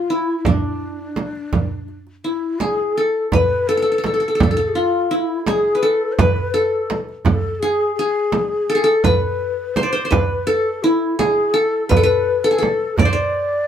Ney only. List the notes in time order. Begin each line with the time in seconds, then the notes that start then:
Already playing: F4
0.09 E4
0.39 E4
0.46 D4
2.25 E4
2.60 G#4
2.96 A4
3.32 B4
3.68 A4
4.67 G#4
4.75 F4
5.10 E4
5.46 G#4
5.84 A4
6.12 C5
6.18 B4
6.54 A4
7.26 A4
7.55 A4
7.59 G#4
7.95 G#4
8.82 A4
9.03 B4
9.74 C5
9.89 C5
10.11 B4
10.47 A4
10.83 E4
11.19 G#4
11.55 A4
11.89 B4
12.03 B4
12.44 A4
12.58 A4
12.97 D5
13.11 D5